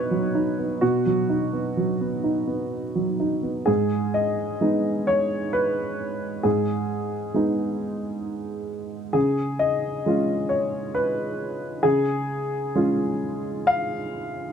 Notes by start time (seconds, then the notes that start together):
Already playing: B2 F#3 B3 D#4 B4 C#5 D#5
0.11 F#3
0.35 D#4
0.59 B3
0.81 B2 F#4
1.06 F#3
1.30 D#4
1.53 B3
1.77 F#3
2.01 B3
2.24 D#4
2.47 B3
2.95 F#3
3.20 D#4
3.43 B3
3.66 G#2 G#4
4.14 D#5
4.61 G#3 B3 D#4
5.07 C#5
5.53 B4
6.43 G#2 G#4
7.34 G#3 B3 D#4
9.13 C#3 G#4
9.59 D#5
10.06 G#3 C#4 F4
10.49 C#5
10.95 B4
11.83 C#3 G#4
12.75 G#3 C#4 F4
13.67 F5